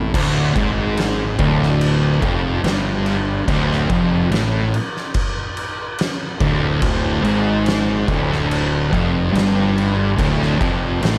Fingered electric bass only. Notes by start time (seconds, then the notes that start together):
0.14 D1
0.55 G#1
1.39 D1
2.22 F1
2.63 G1
3.47 D1
3.90 F1
4.31 A1
6.40 D1
6.82 D1
7.23 G#1
8.08 D1
8.93 F1
9.33 G1
10.18 D1
10.61 F1
11.01 A1